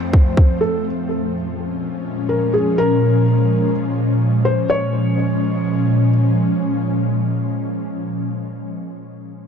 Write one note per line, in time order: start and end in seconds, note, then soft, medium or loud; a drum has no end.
0.00 0.82 F2 medium
0.00 0.82 F3 medium
0.00 0.82 A3 medium
0.00 0.82 C4 medium
0.00 0.57 C5 medium
0.00 downlifter medium
0.14 kick medium
0.37 kick medium
0.61 0.84 A4 medium
0.85 4.66 A#2 medium
0.85 4.66 F3 medium
0.85 4.66 G#3 medium
0.85 4.66 C#4 medium
2.29 2.52 A#4 medium
2.54 2.76 G#4 medium
2.78 3.70 A#4 loud
4.45 4.68 C5 medium
4.69 8.11 A#2 medium
4.69 8.10 F3 medium
4.69 8.11 G#3 medium
4.69 8.11 C#4 medium
4.69 6.10 C#5 medium